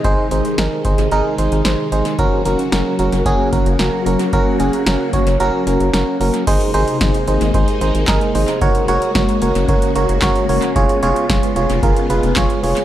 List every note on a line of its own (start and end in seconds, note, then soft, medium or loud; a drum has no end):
0.00 2.15 C3 medium
0.00 2.15 D#3 medium
0.00 2.15 G#3 medium
0.00 2.15 D#4 medium
0.04 0.15 G#1 loud
0.04 0.28 D#4 loud
0.04 0.28 G#4 loud
0.04 0.28 C5 loud
0.04 kick loud
0.04 closed hi-hat medium
0.31 0.42 G#1 loud
0.31 0.54 D#4 medium
0.31 0.54 G#4 medium
0.31 0.54 C5 medium
0.31 closed hi-hat medium
0.45 closed hi-hat medium
0.58 0.68 G#1 loud
0.58 0.81 D#4 medium
0.58 0.81 G#4 medium
0.58 0.81 A#4 medium
0.58 snare loud
0.58 closed hi-hat medium
0.85 0.95 G#1 medium
0.85 1.08 D#4 medium
0.85 1.08 G#4 medium
0.85 1.08 C5 medium
0.85 kick loud
0.85 closed hi-hat medium
0.98 1.08 G#1 loud
0.98 closed hi-hat medium
1.11 1.22 G#1 loud
1.11 1.35 D#4 loud
1.11 1.35 G#4 loud
1.11 1.35 A#4 loud
1.11 closed hi-hat medium
1.38 1.49 G#1 loud
1.38 1.62 D#4 medium
1.38 1.62 G#4 medium
1.38 1.61 C5 medium
1.38 closed hi-hat medium
1.52 1.62 G#1 loud
1.52 closed hi-hat medium
1.65 1.75 G#1 loud
1.65 1.88 D#4 medium
1.65 1.88 G#4 medium
1.65 1.88 C5 medium
1.65 snare loud
1.65 closed hi-hat medium
1.92 2.02 G#1 loud
1.92 2.15 D#4 medium
1.92 2.15 G#4 medium
1.92 2.15 C5 medium
1.92 closed hi-hat medium
2.05 closed hi-hat medium
2.19 2.29 F#1 loud
2.19 6.43 C#3 medium
2.19 6.43 F#3 medium
2.19 6.43 A#3 medium
2.19 2.42 C#4 loud
2.19 6.43 F#4 medium
2.19 2.42 F#4 loud
2.19 2.42 A#4 loud
2.19 kick loud
2.19 closed hi-hat medium
2.45 2.56 F#1 loud
2.45 2.69 C#4 medium
2.45 2.69 F#4 medium
2.45 2.69 A#4 loud
2.45 closed hi-hat medium
2.59 closed hi-hat medium
2.72 2.83 F#1 loud
2.72 2.95 C#4 medium
2.72 2.95 F#4 medium
2.72 2.95 A#4 medium
2.72 snare loud
2.72 closed hi-hat medium
2.99 3.09 F#1 loud
2.99 3.22 C#4 medium
2.99 3.22 F#4 medium
2.99 3.22 A#4 medium
2.99 closed hi-hat medium
3.12 3.23 F#1 medium
3.12 closed hi-hat medium
3.26 3.36 F#1 loud
3.26 3.49 C#4 loud
3.26 3.49 F#4 loud
3.26 3.49 G#4 loud
3.26 kick medium
3.26 closed hi-hat medium
3.53 3.63 F#1 loud
3.53 3.76 C#4 medium
3.53 3.76 F#4 medium
3.53 3.76 A#4 medium
3.53 kick loud
3.53 closed hi-hat medium
3.66 3.76 F#1 loud
3.66 closed hi-hat medium
3.79 3.90 F#1 loud
3.79 4.03 C#4 medium
3.79 4.03 F#4 medium
3.79 4.03 A#4 medium
3.79 snare loud
3.79 closed hi-hat medium
4.06 4.16 F#1 loud
4.06 4.29 C#4 medium
4.06 4.29 F#4 medium
4.06 4.29 A#4 medium
4.06 closed hi-hat medium
4.19 closed hi-hat medium
4.33 4.43 F#1 loud
4.33 4.56 C#4 loud
4.33 4.56 F#4 loud
4.33 4.56 A#4 loud
4.33 kick loud
4.33 closed hi-hat medium
4.60 4.70 F#1 loud
4.60 4.83 C#4 medium
4.60 4.83 F#4 medium
4.60 4.83 G#4 medium
4.60 closed hi-hat medium
4.73 closed hi-hat medium
4.86 4.97 F#1 loud
4.86 5.10 C#4 medium
4.86 5.10 F#4 medium
4.86 5.10 A#4 medium
4.86 snare loud
4.86 closed hi-hat medium
5.13 5.24 F#1 loud
5.13 5.36 C#4 medium
5.13 5.36 F#4 medium
5.13 5.36 C#5 medium
5.13 kick loud
5.13 closed hi-hat medium
5.27 5.37 F#1 loud
5.27 closed hi-hat medium
5.40 5.50 F#1 loud
5.40 5.63 C#4 loud
5.40 5.63 F#4 loud
5.40 5.63 A#4 loud
5.40 closed hi-hat medium
5.67 5.77 F#1 loud
5.67 5.90 C#4 medium
5.67 5.90 F#4 medium
5.67 5.90 A#4 medium
5.67 closed hi-hat medium
5.80 5.90 F#1 loud
5.80 closed hi-hat soft
5.93 6.04 F#1 loud
5.93 6.17 C#4 medium
5.93 6.17 F#4 medium
5.93 6.17 A#4 medium
5.93 snare loud
5.93 closed hi-hat medium
6.20 6.31 F#1 loud
6.20 6.44 C#4 medium
6.20 6.44 F#4 medium
6.20 6.44 A#4 medium
6.20 open hi-hat medium
6.34 closed hi-hat medium
6.47 6.58 G#1 loud
6.47 8.60 C3 medium
6.47 12.85 G#3 medium
6.47 8.59 A#3 medium
6.47 6.70 D#4 loud
6.47 8.59 D#4 medium
6.47 6.70 G#4 loud
6.47 6.70 C5 loud
6.47 kick loud
6.47 closed hi-hat medium
6.47 crash loud
6.61 closed hi-hat medium
6.74 6.84 G#1 loud
6.74 6.97 D#4 loud
6.74 6.97 G#4 loud
6.74 6.97 C5 loud
6.74 closed hi-hat medium
6.88 closed hi-hat medium
7.01 7.11 G#1 loud
7.01 7.24 D#4 medium
7.01 7.24 G#4 medium
7.01 7.24 C5 medium
7.01 kick loud
7.01 snare loud
7.01 closed hi-hat medium
7.14 closed hi-hat medium
7.28 7.38 G#1 loud
7.28 7.51 D#4 medium
7.28 7.51 G#4 medium
7.28 7.51 C5 medium
7.28 closed hi-hat medium
7.41 7.51 G#1 loud
7.41 closed hi-hat medium
7.54 7.65 G#1 loud
7.54 7.78 D#4 medium
7.54 7.78 G#4 medium
7.54 7.78 C5 loud
7.54 kick loud
7.54 closed hi-hat medium
7.68 closed hi-hat medium
7.81 7.91 G#1 loud
7.81 8.04 D#4 medium
7.81 8.04 G#4 medium
7.81 8.04 C5 loud
7.81 closed hi-hat medium
7.95 8.05 G#1 medium
7.95 closed hi-hat medium
8.08 8.18 G#1 loud
8.08 8.31 D#4 loud
8.08 8.31 G#4 loud
8.08 8.31 A#4 loud
8.08 kick loud
8.08 snare loud
8.08 clap medium
8.08 closed hi-hat medium
8.21 closed hi-hat soft
8.35 8.45 G#1 loud
8.35 8.58 D#4 medium
8.35 8.58 G#4 medium
8.35 8.58 C5 medium
8.35 open hi-hat medium
8.48 closed hi-hat medium
8.61 8.72 F#1 loud
8.61 12.85 C#3 medium
8.61 10.74 A#3 medium
8.61 8.85 F#4 loud
8.61 10.74 F#4 medium
8.61 8.85 A#4 loud
8.61 8.85 C#5 loud
8.61 kick loud
8.61 closed hi-hat medium
8.75 closed hi-hat medium
8.88 8.99 F#1 loud
8.88 9.11 F#4 loud
8.88 9.11 A#4 loud
8.88 9.11 C#5 loud
8.88 closed hi-hat medium
9.02 closed hi-hat medium
9.15 9.25 F#1 loud
9.15 9.38 F#4 medium
9.15 9.38 A#4 medium
9.15 9.38 C#5 medium
9.15 kick loud
9.15 snare loud
9.15 closed hi-hat medium
9.29 closed hi-hat medium
9.42 9.52 F#1 loud
9.42 9.65 F#4 medium
9.42 9.65 A#4 medium
9.42 9.65 C#5 medium
9.42 closed hi-hat medium
9.55 9.66 F#1 medium
9.55 closed hi-hat medium
9.68 9.79 F#1 loud
9.68 9.92 F#4 medium
9.68 9.92 A#4 medium
9.68 9.92 C#5 loud
9.68 kick loud
9.68 closed hi-hat medium
9.82 closed hi-hat medium
9.95 10.06 F#1 loud
9.95 10.19 F#4 medium
9.95 10.19 A#4 medium
9.95 10.19 C#5 medium
9.95 closed hi-hat medium
10.09 10.19 F#1 loud
10.09 closed hi-hat medium
10.22 10.33 F#1 loud
10.22 10.45 F#4 loud
10.22 10.45 A#4 loud
10.22 10.45 C#5 loud
10.22 kick loud
10.22 snare loud
10.22 clap medium
10.22 closed hi-hat medium
10.36 closed hi-hat soft
10.49 10.59 F#1 loud
10.49 10.72 F#4 medium
10.49 10.72 A#4 medium
10.49 10.72 C#5 loud
10.49 open hi-hat medium
10.62 closed hi-hat medium
10.76 10.86 F1 loud
10.76 12.85 B3 medium
10.76 12.85 F4 medium
10.76 10.99 F4 loud
10.76 10.99 G#4 loud
10.76 10.99 C#5 loud
10.76 kick loud
10.76 closed hi-hat medium
10.89 closed hi-hat medium
11.03 11.13 F1 loud
11.03 11.26 F4 loud
11.03 11.26 G#4 loud
11.03 11.26 C#5 loud
11.03 closed hi-hat medium
11.16 closed hi-hat medium
11.29 11.40 F1 loud
11.29 11.53 F4 medium
11.29 11.53 G#4 medium
11.29 11.53 C#5 loud
11.29 kick loud
11.29 snare loud
11.29 closed hi-hat medium
11.43 closed hi-hat medium
11.56 11.66 F1 loud
11.56 11.79 F4 medium
11.56 11.79 G#4 medium
11.56 11.79 C#5 loud
11.56 closed hi-hat medium
11.70 11.80 F1 loud
11.70 closed hi-hat medium
11.83 11.93 F1 loud
11.83 12.06 F4 medium
11.83 12.06 G#4 medium
11.83 12.06 A#4 loud
11.83 kick loud
11.83 closed hi-hat medium
11.96 closed hi-hat medium
12.10 12.20 F1 medium
12.10 12.33 F4 medium
12.10 12.33 G#4 medium
12.10 12.33 B4 loud
12.10 closed hi-hat medium
12.23 12.33 F1 loud
12.23 closed hi-hat medium
12.36 12.47 F1 loud
12.36 12.60 F4 loud
12.36 12.60 G#4 loud
12.36 12.60 C#5 loud
12.36 kick loud
12.36 snare loud
12.36 clap medium
12.36 closed hi-hat medium
12.50 closed hi-hat soft
12.63 12.74 F1 loud
12.63 12.85 F4 medium
12.63 12.85 G#4 medium
12.63 12.85 C#5 medium
12.63 open hi-hat medium
12.77 closed hi-hat medium